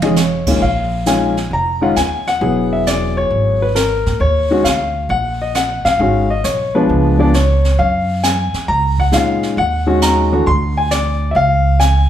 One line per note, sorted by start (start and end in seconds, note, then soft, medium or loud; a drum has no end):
0.00 0.57 F1 medium
0.00 0.15 D#3 medium
0.00 0.15 G#3 medium
0.00 0.16 C#4 medium
0.00 0.16 G#4 medium
0.00 0.17 D#5 medium
0.00 0.43 F5 medium
0.00 high tom medium
0.16 0.63 C#5 medium
0.16 snare soft
0.16 hi-hat pedal soft
0.47 0.60 A#2 medium
0.47 0.60 D#3 medium
0.47 0.60 G#3 medium
0.47 0.61 C#4 medium
0.47 0.61 F4 medium
0.47 kick medium
0.47 crash medium
0.62 1.47 A#1 medium
0.62 1.08 F5 medium
0.62 brush sweep soft
1.06 1.33 D#3 medium
1.06 1.34 G#3 medium
1.06 1.34 C#4 medium
1.06 1.34 F4 medium
1.06 1.53 G#5 medium
1.06 snare medium
1.06 hi-hat pedal medium
1.37 snare soft
1.51 1.93 F1 medium
1.51 1.83 A#5 medium
1.51 brush sweep soft
1.81 1.95 D#3 medium
1.81 1.94 G#3 medium
1.81 1.95 C#4 medium
1.81 1.95 F4 medium
1.81 1.96 F#5 medium
1.96 2.38 D#2 medium
1.96 2.27 G#5 medium
1.96 snare medium
1.96 hi-hat pedal soft
2.27 2.69 F#5 loud
2.27 snare soft
2.41 3.27 E1 medium
2.41 3.67 F#3 medium
2.41 3.67 B3 medium
2.41 3.67 E4 soft
2.41 3.67 G#4 medium
2.41 brush sweep soft
2.73 2.87 E5 medium
2.86 3.15 D5 medium
2.86 snare medium
2.86 hi-hat pedal soft
3.17 3.63 C#5 medium
3.31 4.02 G#1 medium
3.31 brush sweep soft
3.62 3.77 B4 medium
3.75 4.17 A#4 medium
3.75 snare medium
3.75 hi-hat pedal medium
4.06 4.20 A#2 medium
4.06 snare soft
4.20 4.62 D#2 medium
4.20 4.67 C#5 loud
4.20 brush sweep medium
4.51 4.64 D#3 medium
4.51 4.64 G#3 medium
4.51 4.64 C#4 medium
4.51 4.64 F#4 medium
4.64 5.07 D2 medium
4.64 5.06 F5 medium
4.64 snare medium
4.64 hi-hat pedal medium
5.09 5.81 A#1 medium
5.09 5.41 F#5 medium
5.09 brush sweep soft
5.42 5.54 D#5 medium
5.55 5.83 F#5 loud
5.55 snare medium
5.55 hi-hat pedal medium
5.85 5.98 A#1 medium
5.85 6.31 F5 loud
5.85 snare soft
5.99 6.41 G#1 medium
5.99 6.27 D#3 medium
5.99 6.27 G#3 medium
5.99 6.27 C#4 medium
5.99 6.27 F#4 medium
5.99 brush sweep soft
6.30 6.45 D#5 medium
6.44 6.86 B1 medium
6.44 6.75 C#5 medium
6.44 snare medium
6.44 hi-hat pedal medium
6.75 7.17 F3 medium
6.75 7.17 G#3 medium
6.75 7.17 B3 medium
6.75 7.17 D4 medium
6.75 7.16 B4 medium
6.89 7.75 C#2 medium
6.89 brush sweep soft
7.18 7.32 F3 medium
7.18 7.32 G#3 medium
7.18 7.32 B3 medium
7.18 7.33 D4 medium
7.18 7.35 D5 medium
7.34 7.80 C#5 medium
7.34 snare medium
7.34 hi-hat pedal soft
7.65 snare soft
7.79 8.50 F#2 medium
7.79 8.20 F5 medium
7.79 brush sweep medium
8.23 8.65 G#5 medium
8.23 snare medium
8.23 hi-hat pedal medium
8.54 muted upright bass stroke soft
8.54 snare soft
8.68 9.10 C#2 medium
8.68 8.96 A#5 loud
8.68 brush sweep soft
8.99 9.14 F#5 medium
8.99 kick soft
9.12 9.54 A#2 medium
9.12 9.57 D#3 medium
9.12 9.57 G#3 medium
9.12 9.57 C#4 soft
9.12 9.58 F4 medium
9.12 9.59 F5 medium
9.12 snare medium
9.12 hi-hat pedal soft
9.43 snare soft
9.57 10.43 D#2 medium
9.57 10.04 F#5 loud
9.57 brush sweep soft
9.87 10.29 D#3 medium
9.87 10.29 G#3 medium
9.87 10.29 C#4 medium
9.87 10.29 F#4 medium
10.02 10.48 A#5 medium
10.02 snare medium
10.02 hi-hat pedal medium
10.32 10.45 E3 medium
10.32 10.45 A3 medium
10.32 10.46 D4 medium
10.32 10.46 F#4 medium
10.46 11.32 D2 medium
10.46 10.75 C6 loud
10.46 brush sweep soft
10.77 10.92 G#5 medium
10.91 11.33 D5 medium
10.91 snare medium
10.91 hi-hat pedal soft
11.31 12.09 C#2 medium
11.31 11.36 E5 medium
11.36 11.82 F5 loud
11.36 brush sweep soft
11.80 12.09 G#5 loud
11.80 snare medium
11.80 hi-hat pedal soft